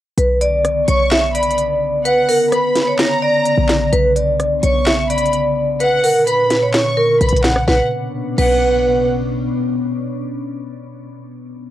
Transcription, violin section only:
0.88 1.32 C#6 medium
1.35 1.57 B5 medium
2.05 2.49 F#5 loud
2.52 2.96 B5 medium
2.99 3.89 A#5 loud
4.63 5.07 C#6 medium
5.10 5.32 B5 medium
5.80 6.24 F#5 loud
6.27 6.71 B5 medium
6.74 7.18 C#6 medium
7.21 7.43 B5 medium
7.44 7.67 F#5 medium
7.68 7.81 F#5 medium
8.38 9.04 F#5 medium

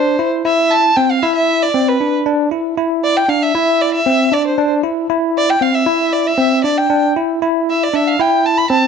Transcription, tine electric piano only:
0.00 0.16 D4 medium
0.19 0.42 E4 medium
0.45 0.90 E4 medium
0.97 1.19 C4 medium
1.23 1.68 E4 loud
1.74 1.97 C4 medium
2.01 2.23 D4 medium
2.26 2.48 D4 medium
2.51 2.74 E4 medium
2.77 3.23 E4 medium
3.28 3.51 D4 medium
3.55 4.00 E4 medium
4.06 4.29 C4 medium
4.32 4.54 D4 medium
4.58 4.80 D4 medium
4.83 5.06 E4 medium
5.10 5.55 E4 medium
5.61 5.84 C4 medium
5.86 6.32 E4 medium
6.38 6.61 C4 medium
6.64 6.87 D4 medium
6.90 7.13 D4 medium
7.16 7.39 E4 medium
7.42 7.87 E4 medium
7.93 8.16 D4 medium
8.19 8.64 E4 loud
8.70 8.87 C4 medium

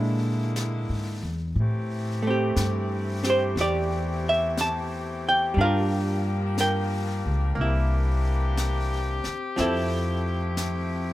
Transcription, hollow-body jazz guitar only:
0.00 1.58 G#3 medium
0.00 1.58 D4 medium
0.00 1.58 E4 medium
2.23 5.54 A3 soft
2.27 3.23 C4 soft
2.27 3.25 G4 medium
3.24 5.58 C4 soft
3.24 3.59 G4 soft
3.30 3.61 C5 medium
3.60 5.55 G4 medium
3.60 4.29 D5 medium
4.29 4.60 E5 medium
4.61 5.23 A5 medium
5.29 5.60 G5 medium
5.54 7.56 G3 soft
5.58 6.60 D4 soft
5.58 7.60 F4 soft
5.58 5.64 A#4 medium
5.58 6.55 F5 medium
5.65 6.59 A#4 soft
6.60 7.55 A#4 medium
6.60 9.23 G5 medium
7.55 9.56 A#3 soft
7.61 9.59 E4 soft
9.56 11.13 F3 soft
9.56 11.13 C4 soft
9.56 11.13 E4 soft
9.61 11.13 A4 medium

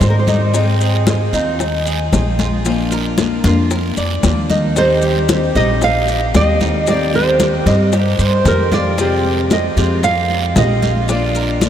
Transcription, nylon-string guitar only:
0.01 0.10 C5 medium
0.10 0.19 A#4 medium
0.19 0.28 C5 medium
4.78 5.59 C5 medium
5.56 5.80 D#5 medium
5.84 6.32 F5 medium
6.36 6.90 D#5 loud
6.90 7.16 D5 medium
7.15 8.06 C5 loud
8.06 8.47 A#4 loud
8.48 8.74 A#4 medium
8.74 9.52 D5 medium
9.53 10.04 D#5 medium
10.04 10.53 F5 medium
10.58 11.09 D#5 medium
11.10 11.69 D5 medium

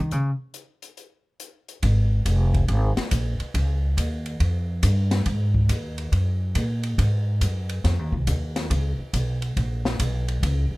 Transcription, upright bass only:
0.00 0.12 D#3 loud
0.12 0.29 C#3 medium
1.83 2.24 G#1 medium
2.25 2.67 F1 medium
2.68 2.95 G#1 medium
3.12 3.38 A#1 medium
3.40 muted upright bass stroke soft
3.54 3.96 C#2 medium
3.97 4.39 D#2 medium
4.40 4.82 F2 medium
4.83 5.25 G2 medium
5.26 5.68 G#2 medium
5.69 6.11 D#2 medium
6.12 6.54 F#2 medium
6.55 6.97 A#2 medium
6.98 7.40 G#2 medium
7.41 7.83 F#2 medium
7.84 7.99 F2 medium
7.99 8.13 D#2 medium
8.13 8.27 C2 medium
8.27 8.69 D#2 medium
8.70 8.97 C#2 medium
8.99 muted upright bass stroke soft
9.13 9.55 B1 medium
9.57 9.98 A#1 medium
10.00 10.41 B1 medium
10.43 10.69 C#2 medium
10.71 muted upright bass stroke soft

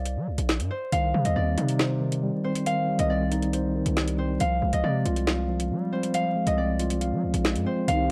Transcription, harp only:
0.00 0.70 C5 medium
0.00 1.31 D5 medium
0.00 0.85 F5 loud
0.71 2.44 C5 medium
0.92 2.59 F5 loud
1.25 1.42 D#5 medium
1.36 3.05 D5 medium
2.44 4.18 C5 medium
2.66 4.33 F5 loud
2.99 3.16 D#5 medium
3.10 4.79 D5 medium
4.19 5.92 C5 medium
4.40 6.07 F5 loud
4.73 4.90 D#5 medium
4.84 6.53 D5 medium
5.93 7.66 C5 medium
6.14 7.81 F5 loud
6.47 6.64 D#5 medium
6.58 8.12 D5 medium
7.66 8.12 C5 medium
7.88 8.12 F5 loud

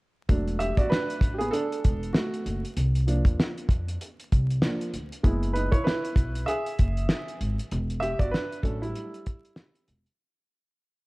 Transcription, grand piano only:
0.29 2.72 F#3 medium
0.29 2.14 A3 soft
0.29 0.90 D4 medium
0.59 0.78 G4 medium
0.59 0.79 E5 medium
0.78 0.91 F#4 medium
0.78 0.91 D5 medium
0.90 1.33 D4 medium
0.90 1.32 B4 medium
1.34 1.40 G4 medium
1.38 1.52 B3 medium
1.38 1.51 G#4 medium
1.51 2.11 D4 medium
1.51 2.10 A4 loud
2.13 2.61 A3 medium
2.13 2.60 F#4 medium
3.07 3.96 F3 soft
3.07 3.96 A#3 soft
3.07 3.96 D4 medium
4.62 4.90 F3 soft
4.62 4.90 A#3 soft
4.62 4.90 D4 soft
5.23 5.67 G#3 medium
5.23 5.68 B3 soft
5.23 5.68 E4 medium
5.53 5.73 D#4 medium
5.53 5.73 B4 medium
5.72 5.85 E4 medium
5.72 5.84 C#5 medium
5.84 6.44 E4 medium
5.84 6.49 B4 medium
6.46 7.37 G#4 medium
6.46 7.36 E5 medium
8.00 8.20 G4 medium
8.00 8.21 E5 medium
8.19 8.33 F#4 medium
8.19 8.33 D5 loud
8.31 8.62 D4 medium
8.31 8.61 B4 medium
8.63 9.08 F#3 soft
8.63 9.08 A3 soft
8.63 8.82 C#4 medium
8.63 9.08 D4 medium
8.63 8.81 A4 medium
8.82 9.85 G3 medium
8.82 9.83 E4 medium

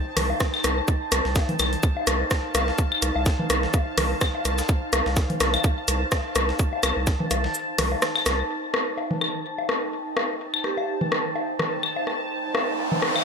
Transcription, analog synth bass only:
0.17 0.33 C2 loud
0.64 0.81 C2 loud
1.12 1.21 C2 loud
1.25 1.40 C2 loud
1.60 1.76 C2 medium
2.07 2.24 C2 loud
2.55 2.71 C2 loud
3.02 3.11 C2 loud
3.16 3.30 C2 loud
3.50 3.67 C2 medium
3.98 4.14 C2 loud
4.45 4.62 C2 medium
4.93 5.02 C2 loud
5.06 5.21 C2 loud
5.40 5.57 C2 medium
5.88 6.05 C2 loud
6.36 6.52 C2 loud
6.83 6.92 C2 loud
6.97 7.11 C2 loud
7.31 7.48 C2 medium
7.78 7.95 C2 loud
8.26 8.43 C2 medium

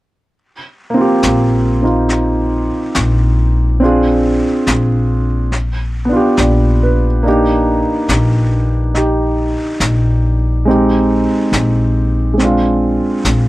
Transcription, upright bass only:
1.23 2.68 A#1 medium
2.96 4.40 A#1 medium
4.67 6.11 A#1 medium
6.38 7.82 A#1 medium
8.09 9.53 A#1 medium
9.80 11.25 A#1 medium
11.52 12.97 A#1 medium
13.24 13.48 A#1 medium

